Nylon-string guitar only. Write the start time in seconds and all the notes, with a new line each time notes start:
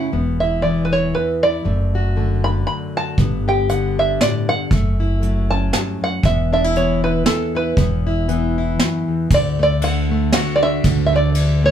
Already playing: A3
0.12 E2 B3
0.43 E4
0.63 E3 B3
0.92 E4
1.14 E2
1.43 E4
1.64 F#2 A3
1.95 F#4
2.16 D3 A3
2.46 D4
2.67 F#2
2.97 F#4
3.19 G2 B3
3.48 G4
3.69 D3 B3
3.99 D4
4.21 A2
4.49 G2
4.71 F#2 A3
5.00 E4
5.22 F#3 A3
5.51 C#4
5.72 G2
6.01 F#2
6.23 E2 B3
6.53 D4
6.64 E4
6.75 E3 B3
7.04 E4
7.26 E2
7.55 E4
7.77 E2 B3
8.07 E4
8.28 E3 B3
8.58 E4
8.79 F#2
9.08 E2
9.31 D2
9.59 A3
9.82 D3
10.11 A3
10.34 F#4
10.63 D4
10.84 D2
11.13 A3
11.34 D3
11.64 A3